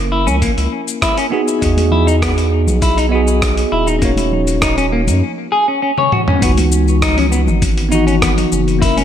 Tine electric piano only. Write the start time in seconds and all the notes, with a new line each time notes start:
Already playing: A#3 C#4 E4 A#4
1.30 B3 D#4 F#4 G#4
1.59 B3 D#5
1.63 F#4 G#4
3.09 B3 D#5
3.13 F#4 G#4
3.99 C#4 D#4
4.03 F#4 C#5
6.39 E3 B3 D#4
6.45 F#4
7.89 E3 B3 D#4
7.95 F#4
8.79 A#3 C#4
8.83 E4 A#4